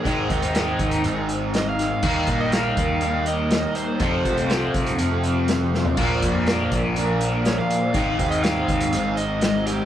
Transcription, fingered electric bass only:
0.06 G#1
0.30 D#2
0.79 D#2
1.04 G#1
2.03 D#2
2.28 A#1
2.77 D#2
4.00 F2
4.25 C2
4.74 C2
4.99 F2
5.98 A#1
6.23 F2
6.72 A#1
7.94 G#1
8.19 D#2
8.68 D#2
8.94 G#1

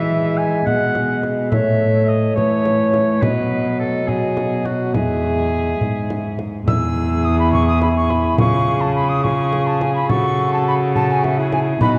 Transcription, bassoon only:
Already playing: G#3
1.52 A3
2.37 E3
3.23 F#3
4.94 G#3
6.67 E4
8.39 F4
9.24 F4
10.10 F#4
10.95 F#4
11.38 E4
11.81 D#4

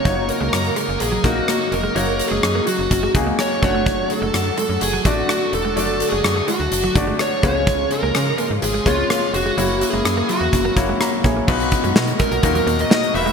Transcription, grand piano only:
Already playing: A#3 D#4 F#4 C#5
0.04 A#3 D#4 F#4 C#5
1.24 A#3 D#4 F#4 A#4
1.95 A#3 D#4 F#4 C#5
3.14 A#3 D#4 F#4 G#4
3.62 A3 D4 F#4 F#5
5.05 A3 D4 F#4 D5
5.76 A3 D4 F#4 D5
6.95 A3 D4 F#4 D5
7.43 C#3 G#3 C#4 F4 C#5
8.86 G#3 C#4 F4 C#5
9.57 A#3 E4 F#4 C#5
10.76 A#3 E4 F#4 C#5
11.00 E5 A#5
11.24 G#4 C#5
11.47 A#2 B2 D#4 F#4 B4
12.43 A#2 D#4 F#4 A#4
13.14 A#3 D#4 F#4 B4

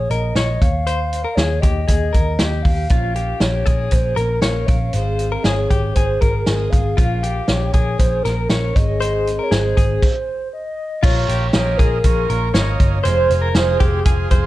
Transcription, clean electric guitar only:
0.11 A#4
0.36 C#5
0.87 C5
1.24 A#4
1.38 G#4
1.62 G4
1.88 G#4
2.13 A#4
2.39 G4
2.91 F4
3.16 G4
3.66 G#4
4.16 A#4
4.42 C#5
4.94 C5
5.32 A#4
5.46 G#4
5.70 G4
5.97 G#4
6.21 A#4
6.46 G#4
6.97 F4
7.23 G4
7.74 G#4
8.25 A#4
8.51 C#5
9.00 C5
9.39 A#4
9.51 G#4
9.77 G#4
11.03 F4
11.28 G4
11.79 G#4
12.30 A#4
12.54 C#5
13.04 C5
13.42 A#4
13.55 G#4
13.80 G4
14.06 G#4
14.31 C5

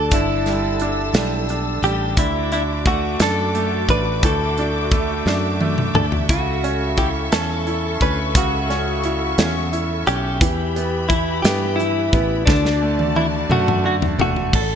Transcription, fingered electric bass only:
0.12 G1
1.13 B1
1.83 A1
2.17 D2
3.20 F#2
3.89 A1
4.23 D2
5.26 F#2
5.95 D2
6.29 C#2
7.33 E2
8.01 D2
8.35 C#2
9.38 E2
10.07 B1
10.41 E2
11.44 G2
12.13 A1
12.47 D2
13.50 F#2
14.18 E1
14.53 A1

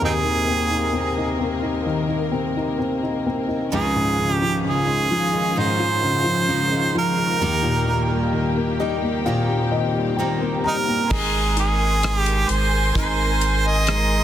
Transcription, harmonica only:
0.04 C4 D#4 G#4
3.73 G#4
4.32 G4
4.67 G#4
5.58 C5
6.98 A#4
10.67 D#4 A#4
11.13 G#4
11.59 G#4
12.18 G4
12.50 C5
12.97 C5
13.67 D#5

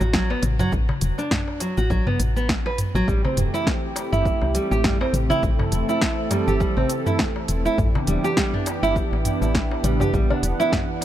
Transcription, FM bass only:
0.01 A1
0.43 A1
0.72 A1
1.02 E1
1.78 A1
1.90 A1
2.20 A1
2.95 A1
3.08 A1
3.37 E1
4.13 G1
4.42 C2
4.71 A1
5.13 A1
5.43 A1
5.72 E1
6.48 G1
6.77 A1
7.49 E1
7.78 A1
8.08 E1
8.83 G1
9.12 A1
9.42 A1
9.84 A1
10.14 A1
10.43 E1

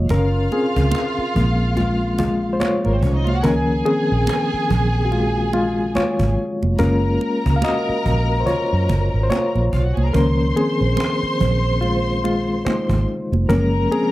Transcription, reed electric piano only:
Already playing: D#3 F3 G#3 A#3 F4 F#4 C#5 D#5
0.11 C#4 A#4
0.53 C4 G#4
1.35 F3 G#3 A#3
1.77 G#3 F4
2.19 G#3 F4
2.53 C5
2.60 F4 C#5
3.43 D#3 F3 A#3 C#4 A#4
3.86 C4 G#4
5.05 F#4
5.12 G#3 F4
5.54 G#3 F4
5.96 F4 C#5
6.79 G#3 A#3 C#4 F4 A#4
7.56 F5
7.64 F#4 D#5
8.40 C5
8.46 F4 C#5
9.23 C5
9.30 F4 C#5
10.13 D#3 F3 A#3 C#4 A#4
10.56 C4 G#4
11.81 G#3 F4
12.24 G#3 F4
12.65 D#4 C5
13.48 F3 G#3 A#3 C#4 A#4
13.92 C4 G#4

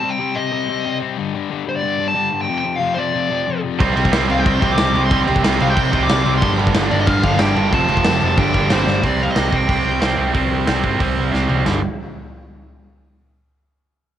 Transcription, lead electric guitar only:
Already playing: A5
0.10 G5
0.36 D#5
1.69 C5
1.76 D5
2.08 A5
2.41 G5
2.58 G5
2.76 F5
2.94 C5
3.00 D5
4.31 F5
4.39 G5
4.72 D6
5.06 C6
5.62 F5
5.70 G5
6.03 D6
6.38 C6
6.91 D5
7.00 D#5
7.07 F5
7.24 F5
7.40 G5
7.74 A5
8.39 G5
8.73 C5
9.06 D5
9.23 F5
9.32 D#5
9.56 G5

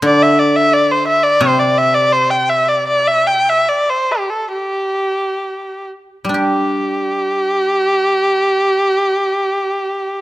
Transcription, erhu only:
0.06 D5
0.23 E5
0.39 D5
0.56 E5
0.73 D5
0.91 C5
1.08 E5
1.23 D5
1.42 C5
1.59 D5
1.78 E5
1.94 D5
2.13 C5
2.30 G5
2.49 E5
2.69 D5
2.88 D5
3.07 E5
3.27 G5
3.49 E5
3.69 D5
3.90 C5
4.12 G4
4.30 A4
4.52 G4
6.38 G4

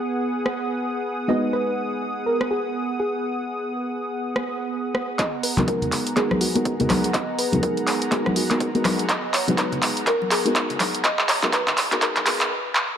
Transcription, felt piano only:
Already playing: G#3 B3 D#4 F#4 A#4
1.28 G#3 B3 D#4 F#4 B4
5.57 G#3 B3 D#4 F#4 A#4
6.16 G#3 B3 D#4 F#4 A#4
6.55 G#3 B3 D#4 F#4 A#4
6.79 G#3 B3 D#4 F#4 A#4
7.52 G#3 B3 D#4 F#4 A#4
8.11 G#3 B3 D#4 F#4 A#4
8.50 G#3 B3 D#4 F#4 A#4
8.75 G#3 B3 D#4 F#4 A#4
9.47 G#3 B3 D#4 F#4 B4
10.45 G#3 B3 D#4 F#4 A#4
11.42 G#3 B3 D#4 F#4 A#4
11.91 G#3 B3 D#4 F#4 A#4
12.01 G#3 B3 D#4 F#4 A#4
12.26 G#3 B3 D#4 F#4 A#4

